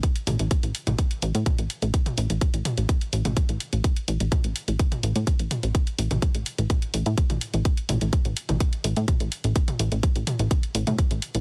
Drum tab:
HH |xxoxxxoxxxoxxxox|xxoxxxoxxxoxxxox|xxoxxxoxxxoxxxox|xxoxxxoxxxoxxxox|
T2 |--o----o----o---|-o----o----o----|----o----o----o-|---o----o----o--|
BD |o---o---o---o---|o---o---o---o---|o---o---o---o---|o---o---o---o---|

HH |xxoxxxoxxxoxxxox|xxoxxxoxxxoxxxox|
T2 |--o----o----o---|-o----o----o----|
BD |o---o---o---o---|o---o---o---o---|